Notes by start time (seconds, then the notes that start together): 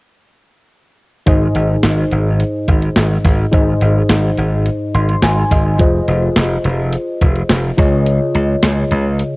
1.26 G#1 G#2 D#4 G#4 C5 D#5, kick, closed hi-hat
1.55 G#1, closed hi-hat
1.83 G#1, snare, closed hi-hat
2.11 G#1, closed hi-hat
2.40 closed hi-hat
2.68 G#1, kick, closed hi-hat
2.82 closed hi-hat
2.96 G#1, snare, closed hi-hat
3.24 G#1, kick, open hi-hat
3.52 G#1 G#2 D#4 G#4 C5 D#5, kick, closed hi-hat
3.81 G#1, closed hi-hat
4.09 G#1, snare, closed hi-hat
4.38 G#1, closed hi-hat
4.66 closed hi-hat
4.94 G#1 C6, closed hi-hat
5.09 closed hi-hat
5.22 G#1 G#5, snare, closed hi-hat
5.51 G#1 D#5, kick, open hi-hat
5.79 F1 F4 G#4 C5 D#5, kick, closed hi-hat
6.08 F1, closed hi-hat
6.36 F1, snare, closed hi-hat
6.64 F1, closed hi-hat
6.93 closed hi-hat
7.21 F1, kick, closed hi-hat
7.35 closed hi-hat
7.49 F1, snare, closed hi-hat
7.77 C#2 C#3 F4 G#4 C#5 D#5, kick, open hi-hat
8.06 closed hi-hat
8.35 C#2, closed hi-hat
8.63 C#2, snare, closed hi-hat
8.91 C#2, closed hi-hat
9.19 closed hi-hat